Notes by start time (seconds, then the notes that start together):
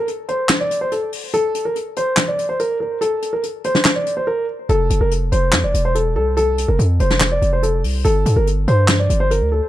0.08 closed hi-hat
0.28 C5, closed hi-hat
0.49 snare, clap, closed hi-hat
0.60 D5
0.71 closed hi-hat
0.81 C5
0.92 A4, closed hi-hat
1.13 open hi-hat
1.33 A4, closed hi-hat
1.54 closed hi-hat
1.65 A#4
1.76 closed hi-hat
1.96 C5, closed hi-hat
2.17 snare, clap, closed hi-hat
2.28 D5
2.39 closed hi-hat
2.49 C5
2.59 A#4, closed hi-hat
2.80 A#4
3.01 A4, closed hi-hat
3.22 closed hi-hat
3.33 A#4
3.43 closed hi-hat
3.64 C5, closed hi-hat
3.75 snare
3.85 snare, clap, closed hi-hat
3.96 D5
4.06 closed hi-hat
4.17 C5
4.27 A#4
4.69 F1 A4, closed hi-hat
4.90 F1, closed hi-hat
5.01 F1 A#4
5.11 closed hi-hat
5.32 F1 C5, closed hi-hat
5.52 F2, snare, clap, closed hi-hat
5.64 F1 D5
5.74 E1, closed hi-hat
5.85 C5
5.95 A4, closed hi-hat
6.16 C2 A4
6.37 A4, closed hi-hat
6.58 closed hi-hat
6.68 F1 A#4
6.79 F2, closed hi-hat
7.00 F1 C5, closed hi-hat
7.10 snare
7.20 snare, clap, closed hi-hat
7.32 D5
7.42 F1, closed hi-hat
7.53 C5
7.63 A4, closed hi-hat
7.84 C2, open hi-hat
8.05 G1 A4, closed hi-hat
8.26 G2, closed hi-hat
8.36 G1 A#4
8.47 closed hi-hat
8.68 G2 C5, closed hi-hat
8.88 snare, clap, closed hi-hat
8.99 D5
9.10 G1, closed hi-hat
9.20 C5
9.31 A#4, closed hi-hat
9.41 D2
9.52 A4